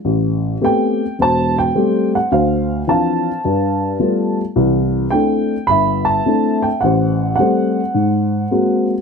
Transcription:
0.05 A1
0.61 A3 B3 C4 G4 G5
1.19 E1 C5 A5
1.58 G5
1.75 G3 A3 C4 G4
2.15 F#5
2.32 D2 C5 F5
2.87 E3 F3 C4 D4 F5 A5
3.45 G2
4.00 G3 A3 B3 F4
4.55 C2 E3
5.11 A3 C4 D4 E4 G5
5.67 G1 E5 B5
6.05 A5
6.26 A3 C4 D4 E4
6.62 G5
6.81 A1 F#5
6.85 C5
7.36 G3 A3 G4 F#5
7.40 C4 C5
7.95 G#2
8.51 G#3 A#3 C4 F#4

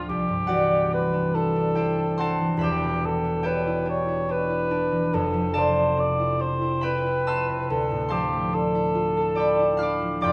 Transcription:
Already playing: D2 A2 F3 A3 C4 D4 F4 A4 C5 D5 F5 A5 C6 D6
0.08 C2 G4
0.28 G2
0.47 E3 F#4 B4 D5 F#5
0.71 B3
0.93 C4 B4
1.13 D4
1.35 E4 A4
1.56 D4
1.75 E4 G4 C5 E5 G5
1.99 D4
2.18 C4 C5 F#5 A5 C6
2.40 E3
2.57 E1 E2 B4 B5
2.61 G4 E5 G5
2.84 B2
3.04 E3 A4
3.24 B3
3.43 D4 G4 B4 C#5 E5 G5
3.67 E4
3.86 D4 C#5
4.08 E4
4.29 D4 B4
4.50 E4
4.71 D4
4.92 E3
5.13 F1 F2 A4
5.34 F3
5.54 C3 A4 D5 F5 A5
5.58 C5
5.76 B3
5.97 C4 D5
6.19 E4
6.39 C4 C5
6.62 E4
6.81 C4 B4 E5 G5 B5
7.06 E4
7.27 C4 E5 A5 C6 E6
7.49 C3
7.70 D2 A4
7.91 A2
8.08 F3 G4 C5 F5 A5 C6
8.33 A3
8.53 D4 A4
8.75 E4
8.95 F4
9.17 A4
9.35 F4 D5 G5 D6
9.39 B5
9.59 E4
9.77 D4 F5 B5 F6
9.83 D6
10.02 F3
10.21 F1 F2 F4 D5 G5 B5 D6

